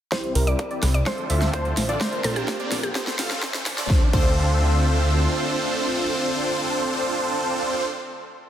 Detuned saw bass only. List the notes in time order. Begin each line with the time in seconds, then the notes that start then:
0.35 C2
0.83 C2
1.30 D2
1.54 D2
1.77 A1
2.24 A#1
2.72 A#1
3.19 A1
3.43 A1
3.66 E2
3.90 D2
4.13 D2